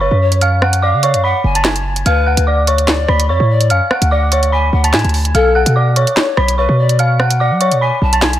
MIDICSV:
0, 0, Header, 1, 5, 480
1, 0, Start_track
1, 0, Tempo, 410959
1, 485, Time_signature, 4, 2, 24, 8
1, 9807, End_track
2, 0, Start_track
2, 0, Title_t, "Synth bell"
2, 0, Program_c, 0, 98
2, 5, Note_on_c, 0, 85, 70
2, 15, Note_on_c, 0, 73, 60
2, 456, Note_off_c, 0, 85, 0
2, 461, Note_off_c, 0, 73, 0
2, 485, Note_on_c, 0, 89, 99
2, 494, Note_on_c, 0, 77, 69
2, 691, Note_off_c, 0, 89, 0
2, 696, Note_off_c, 0, 77, 0
2, 725, Note_on_c, 0, 90, 77
2, 735, Note_on_c, 0, 78, 62
2, 931, Note_off_c, 0, 90, 0
2, 937, Note_off_c, 0, 78, 0
2, 963, Note_on_c, 0, 86, 90
2, 973, Note_on_c, 0, 74, 66
2, 1170, Note_off_c, 0, 86, 0
2, 1176, Note_off_c, 0, 74, 0
2, 1204, Note_on_c, 0, 85, 81
2, 1213, Note_on_c, 0, 73, 59
2, 1411, Note_off_c, 0, 85, 0
2, 1416, Note_off_c, 0, 73, 0
2, 1444, Note_on_c, 0, 83, 85
2, 1454, Note_on_c, 0, 95, 60
2, 1789, Note_off_c, 0, 83, 0
2, 1794, Note_off_c, 0, 95, 0
2, 1813, Note_on_c, 0, 81, 78
2, 1821, Note_on_c, 0, 93, 62
2, 1909, Note_off_c, 0, 81, 0
2, 1914, Note_off_c, 0, 93, 0
2, 1924, Note_on_c, 0, 80, 78
2, 1934, Note_on_c, 0, 92, 65
2, 2376, Note_off_c, 0, 80, 0
2, 2380, Note_off_c, 0, 92, 0
2, 2405, Note_on_c, 0, 89, 98
2, 2414, Note_on_c, 0, 77, 79
2, 2611, Note_off_c, 0, 89, 0
2, 2616, Note_off_c, 0, 77, 0
2, 2644, Note_on_c, 0, 90, 79
2, 2654, Note_on_c, 0, 78, 62
2, 2851, Note_off_c, 0, 90, 0
2, 2856, Note_off_c, 0, 78, 0
2, 2884, Note_on_c, 0, 86, 75
2, 2895, Note_on_c, 0, 74, 59
2, 3091, Note_off_c, 0, 86, 0
2, 3097, Note_off_c, 0, 74, 0
2, 3125, Note_on_c, 0, 85, 68
2, 3134, Note_on_c, 0, 73, 56
2, 3576, Note_off_c, 0, 85, 0
2, 3581, Note_off_c, 0, 73, 0
2, 3604, Note_on_c, 0, 83, 78
2, 3613, Note_on_c, 0, 95, 59
2, 3811, Note_off_c, 0, 83, 0
2, 3816, Note_off_c, 0, 95, 0
2, 3845, Note_on_c, 0, 85, 74
2, 3854, Note_on_c, 0, 73, 58
2, 4296, Note_off_c, 0, 85, 0
2, 4301, Note_off_c, 0, 73, 0
2, 4324, Note_on_c, 0, 89, 89
2, 4334, Note_on_c, 0, 77, 76
2, 4531, Note_off_c, 0, 89, 0
2, 4536, Note_off_c, 0, 77, 0
2, 4565, Note_on_c, 0, 90, 77
2, 4574, Note_on_c, 0, 78, 62
2, 4771, Note_off_c, 0, 90, 0
2, 4777, Note_off_c, 0, 78, 0
2, 4805, Note_on_c, 0, 86, 83
2, 4813, Note_on_c, 0, 74, 72
2, 5011, Note_off_c, 0, 86, 0
2, 5016, Note_off_c, 0, 74, 0
2, 5046, Note_on_c, 0, 85, 79
2, 5055, Note_on_c, 0, 73, 62
2, 5252, Note_off_c, 0, 85, 0
2, 5257, Note_off_c, 0, 73, 0
2, 5283, Note_on_c, 0, 83, 81
2, 5292, Note_on_c, 0, 95, 69
2, 5629, Note_off_c, 0, 83, 0
2, 5633, Note_off_c, 0, 95, 0
2, 5651, Note_on_c, 0, 81, 76
2, 5661, Note_on_c, 0, 93, 61
2, 5749, Note_off_c, 0, 81, 0
2, 5754, Note_off_c, 0, 93, 0
2, 5764, Note_on_c, 0, 80, 90
2, 5774, Note_on_c, 0, 92, 64
2, 6215, Note_off_c, 0, 80, 0
2, 6220, Note_off_c, 0, 92, 0
2, 6244, Note_on_c, 0, 89, 96
2, 6253, Note_on_c, 0, 77, 76
2, 6451, Note_off_c, 0, 89, 0
2, 6456, Note_off_c, 0, 77, 0
2, 6484, Note_on_c, 0, 90, 86
2, 6494, Note_on_c, 0, 78, 65
2, 6691, Note_off_c, 0, 90, 0
2, 6696, Note_off_c, 0, 78, 0
2, 6725, Note_on_c, 0, 86, 73
2, 6734, Note_on_c, 0, 74, 58
2, 6931, Note_off_c, 0, 86, 0
2, 6936, Note_off_c, 0, 74, 0
2, 6965, Note_on_c, 0, 85, 70
2, 6974, Note_on_c, 0, 73, 58
2, 7416, Note_off_c, 0, 85, 0
2, 7420, Note_off_c, 0, 73, 0
2, 7444, Note_on_c, 0, 83, 79
2, 7454, Note_on_c, 0, 95, 60
2, 7651, Note_off_c, 0, 83, 0
2, 7656, Note_off_c, 0, 95, 0
2, 7685, Note_on_c, 0, 85, 70
2, 7695, Note_on_c, 0, 73, 56
2, 8136, Note_off_c, 0, 85, 0
2, 8141, Note_off_c, 0, 73, 0
2, 8165, Note_on_c, 0, 89, 89
2, 8174, Note_on_c, 0, 77, 76
2, 8371, Note_off_c, 0, 89, 0
2, 8376, Note_off_c, 0, 77, 0
2, 8403, Note_on_c, 0, 90, 75
2, 8413, Note_on_c, 0, 78, 61
2, 8610, Note_off_c, 0, 90, 0
2, 8616, Note_off_c, 0, 78, 0
2, 8645, Note_on_c, 0, 86, 88
2, 8655, Note_on_c, 0, 74, 67
2, 8851, Note_off_c, 0, 86, 0
2, 8857, Note_off_c, 0, 74, 0
2, 8885, Note_on_c, 0, 85, 80
2, 8894, Note_on_c, 0, 73, 69
2, 9091, Note_off_c, 0, 85, 0
2, 9096, Note_off_c, 0, 73, 0
2, 9126, Note_on_c, 0, 83, 82
2, 9134, Note_on_c, 0, 95, 61
2, 9470, Note_off_c, 0, 83, 0
2, 9475, Note_off_c, 0, 95, 0
2, 9492, Note_on_c, 0, 81, 83
2, 9502, Note_on_c, 0, 93, 62
2, 9589, Note_off_c, 0, 81, 0
2, 9594, Note_off_c, 0, 93, 0
2, 9606, Note_on_c, 0, 80, 85
2, 9615, Note_on_c, 0, 92, 68
2, 9807, Note_off_c, 0, 80, 0
2, 9807, Note_off_c, 0, 92, 0
2, 9807, End_track
3, 0, Start_track
3, 0, Title_t, "Pan flute"
3, 0, Program_c, 1, 75
3, 5, Note_on_c, 1, 71, 84
3, 233, Note_off_c, 1, 71, 0
3, 245, Note_on_c, 1, 73, 89
3, 473, Note_off_c, 1, 73, 0
3, 965, Note_on_c, 1, 77, 81
3, 1416, Note_off_c, 1, 77, 0
3, 1446, Note_on_c, 1, 78, 90
3, 1673, Note_off_c, 1, 78, 0
3, 1686, Note_on_c, 1, 80, 88
3, 1913, Note_off_c, 1, 80, 0
3, 2405, Note_on_c, 1, 71, 109
3, 2856, Note_off_c, 1, 71, 0
3, 3364, Note_on_c, 1, 74, 88
3, 3816, Note_off_c, 1, 74, 0
3, 3845, Note_on_c, 1, 73, 88
3, 4073, Note_off_c, 1, 73, 0
3, 4085, Note_on_c, 1, 74, 84
3, 4312, Note_off_c, 1, 74, 0
3, 4805, Note_on_c, 1, 78, 85
3, 5256, Note_off_c, 1, 78, 0
3, 5286, Note_on_c, 1, 80, 78
3, 5513, Note_off_c, 1, 80, 0
3, 5525, Note_on_c, 1, 78, 88
3, 5753, Note_off_c, 1, 78, 0
3, 6246, Note_on_c, 1, 69, 118
3, 6696, Note_off_c, 1, 69, 0
3, 7207, Note_on_c, 1, 73, 96
3, 7657, Note_off_c, 1, 73, 0
3, 7685, Note_on_c, 1, 71, 83
3, 7913, Note_off_c, 1, 71, 0
3, 7925, Note_on_c, 1, 74, 88
3, 8153, Note_off_c, 1, 74, 0
3, 8646, Note_on_c, 1, 78, 91
3, 9096, Note_off_c, 1, 78, 0
3, 9126, Note_on_c, 1, 80, 86
3, 9353, Note_off_c, 1, 80, 0
3, 9365, Note_on_c, 1, 81, 83
3, 9593, Note_off_c, 1, 81, 0
3, 9807, End_track
4, 0, Start_track
4, 0, Title_t, "808-style bass"
4, 0, Program_c, 2, 38
4, 132, Note_on_c, 2, 42, 107
4, 1091, Note_on_c, 2, 49, 98
4, 1109, Note_off_c, 2, 42, 0
4, 1332, Note_on_c, 2, 42, 99
4, 1349, Note_off_c, 2, 49, 0
4, 1560, Note_off_c, 2, 42, 0
4, 1684, Note_on_c, 2, 30, 107
4, 2375, Note_off_c, 2, 30, 0
4, 2404, Note_on_c, 2, 38, 116
4, 2757, Note_off_c, 2, 38, 0
4, 2772, Note_on_c, 2, 38, 104
4, 3571, Note_off_c, 2, 38, 0
4, 3604, Note_on_c, 2, 38, 109
4, 3844, Note_on_c, 2, 41, 102
4, 3862, Note_off_c, 2, 38, 0
4, 3965, Note_off_c, 2, 41, 0
4, 3971, Note_on_c, 2, 45, 112
4, 4324, Note_on_c, 2, 42, 99
4, 4342, Note_off_c, 2, 45, 0
4, 4445, Note_off_c, 2, 42, 0
4, 4691, Note_on_c, 2, 38, 107
4, 5491, Note_off_c, 2, 38, 0
4, 5524, Note_on_c, 2, 38, 105
4, 5764, Note_on_c, 2, 45, 97
4, 5782, Note_off_c, 2, 38, 0
4, 5885, Note_off_c, 2, 45, 0
4, 5891, Note_on_c, 2, 38, 106
4, 6230, Note_off_c, 2, 38, 0
4, 6244, Note_on_c, 2, 35, 113
4, 6597, Note_off_c, 2, 35, 0
4, 6611, Note_on_c, 2, 47, 103
4, 7072, Note_off_c, 2, 47, 0
4, 7444, Note_on_c, 2, 35, 104
4, 7797, Note_off_c, 2, 35, 0
4, 7812, Note_on_c, 2, 47, 111
4, 8771, Note_on_c, 2, 54, 99
4, 8789, Note_off_c, 2, 47, 0
4, 9011, Note_on_c, 2, 47, 106
4, 9029, Note_off_c, 2, 54, 0
4, 9239, Note_off_c, 2, 47, 0
4, 9364, Note_on_c, 2, 35, 104
4, 9807, Note_off_c, 2, 35, 0
4, 9807, End_track
5, 0, Start_track
5, 0, Title_t, "Drums"
5, 371, Note_on_c, 9, 42, 75
5, 484, Note_off_c, 9, 42, 0
5, 484, Note_on_c, 9, 42, 76
5, 601, Note_off_c, 9, 42, 0
5, 724, Note_on_c, 9, 37, 101
5, 841, Note_off_c, 9, 37, 0
5, 852, Note_on_c, 9, 42, 100
5, 969, Note_off_c, 9, 42, 0
5, 1202, Note_on_c, 9, 42, 87
5, 1319, Note_off_c, 9, 42, 0
5, 1331, Note_on_c, 9, 42, 71
5, 1448, Note_off_c, 9, 42, 0
5, 1813, Note_on_c, 9, 42, 93
5, 1923, Note_off_c, 9, 42, 0
5, 1923, Note_on_c, 9, 38, 118
5, 1923, Note_on_c, 9, 39, 96
5, 1923, Note_on_c, 9, 42, 66
5, 2039, Note_off_c, 9, 42, 0
5, 2040, Note_off_c, 9, 38, 0
5, 2040, Note_off_c, 9, 39, 0
5, 2052, Note_on_c, 9, 42, 90
5, 2169, Note_off_c, 9, 42, 0
5, 2291, Note_on_c, 9, 42, 78
5, 2404, Note_off_c, 9, 42, 0
5, 2404, Note_on_c, 9, 42, 75
5, 2521, Note_off_c, 9, 42, 0
5, 2771, Note_on_c, 9, 42, 97
5, 2888, Note_off_c, 9, 42, 0
5, 3123, Note_on_c, 9, 42, 85
5, 3239, Note_off_c, 9, 42, 0
5, 3251, Note_on_c, 9, 42, 70
5, 3364, Note_on_c, 9, 39, 94
5, 3365, Note_on_c, 9, 38, 117
5, 3368, Note_off_c, 9, 42, 0
5, 3481, Note_off_c, 9, 38, 0
5, 3481, Note_off_c, 9, 39, 0
5, 3603, Note_on_c, 9, 37, 95
5, 3719, Note_off_c, 9, 37, 0
5, 3733, Note_on_c, 9, 42, 93
5, 3850, Note_off_c, 9, 42, 0
5, 4211, Note_on_c, 9, 42, 75
5, 4323, Note_off_c, 9, 42, 0
5, 4323, Note_on_c, 9, 42, 75
5, 4440, Note_off_c, 9, 42, 0
5, 4563, Note_on_c, 9, 37, 100
5, 4680, Note_off_c, 9, 37, 0
5, 4692, Note_on_c, 9, 42, 95
5, 4809, Note_off_c, 9, 42, 0
5, 5043, Note_on_c, 9, 42, 88
5, 5160, Note_off_c, 9, 42, 0
5, 5172, Note_on_c, 9, 42, 71
5, 5288, Note_off_c, 9, 42, 0
5, 5654, Note_on_c, 9, 42, 95
5, 5765, Note_off_c, 9, 42, 0
5, 5765, Note_on_c, 9, 38, 115
5, 5765, Note_on_c, 9, 39, 96
5, 5765, Note_on_c, 9, 42, 71
5, 5829, Note_off_c, 9, 42, 0
5, 5829, Note_on_c, 9, 42, 57
5, 5881, Note_off_c, 9, 39, 0
5, 5882, Note_off_c, 9, 38, 0
5, 5893, Note_off_c, 9, 42, 0
5, 5893, Note_on_c, 9, 42, 51
5, 5949, Note_off_c, 9, 42, 0
5, 5949, Note_on_c, 9, 42, 42
5, 6004, Note_on_c, 9, 46, 56
5, 6066, Note_off_c, 9, 42, 0
5, 6121, Note_off_c, 9, 46, 0
5, 6133, Note_on_c, 9, 42, 76
5, 6246, Note_off_c, 9, 42, 0
5, 6246, Note_on_c, 9, 42, 75
5, 6362, Note_off_c, 9, 42, 0
5, 6613, Note_on_c, 9, 42, 101
5, 6730, Note_off_c, 9, 42, 0
5, 6963, Note_on_c, 9, 42, 87
5, 7080, Note_off_c, 9, 42, 0
5, 7092, Note_on_c, 9, 42, 72
5, 7205, Note_on_c, 9, 38, 118
5, 7205, Note_on_c, 9, 39, 93
5, 7209, Note_off_c, 9, 42, 0
5, 7322, Note_off_c, 9, 38, 0
5, 7322, Note_off_c, 9, 39, 0
5, 7443, Note_on_c, 9, 37, 95
5, 7560, Note_off_c, 9, 37, 0
5, 7573, Note_on_c, 9, 42, 94
5, 7690, Note_off_c, 9, 42, 0
5, 8052, Note_on_c, 9, 42, 74
5, 8165, Note_off_c, 9, 42, 0
5, 8165, Note_on_c, 9, 42, 73
5, 8282, Note_off_c, 9, 42, 0
5, 8405, Note_on_c, 9, 37, 102
5, 8521, Note_off_c, 9, 37, 0
5, 8532, Note_on_c, 9, 42, 95
5, 8649, Note_off_c, 9, 42, 0
5, 8884, Note_on_c, 9, 42, 90
5, 9000, Note_off_c, 9, 42, 0
5, 9011, Note_on_c, 9, 42, 74
5, 9128, Note_off_c, 9, 42, 0
5, 9493, Note_on_c, 9, 42, 96
5, 9603, Note_off_c, 9, 42, 0
5, 9603, Note_on_c, 9, 42, 67
5, 9604, Note_on_c, 9, 38, 117
5, 9604, Note_on_c, 9, 39, 96
5, 9720, Note_off_c, 9, 39, 0
5, 9720, Note_off_c, 9, 42, 0
5, 9721, Note_off_c, 9, 38, 0
5, 9733, Note_on_c, 9, 42, 92
5, 9807, Note_off_c, 9, 42, 0
5, 9807, End_track
0, 0, End_of_file